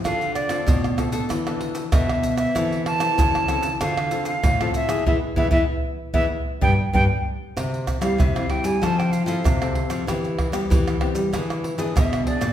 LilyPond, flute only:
\new Staff \with { instrumentName = "Flute" } { \time 4/4 \key e \phrygian \tempo 4 = 96 f''8 d''4 r4. e''8. e''16~ | e''8 a''4. f''8. f''8. e''8 | e''16 r16 e''16 e''16 r8. e''16 r8 g''16 r16 g''16 r8. | \key c \major r8. f''16 e''16 f''16 g''16 aes''16 a''16 g''16 f''16 f''4~ f''16~ |
f''16 r2 r8. e''8 d''8 | }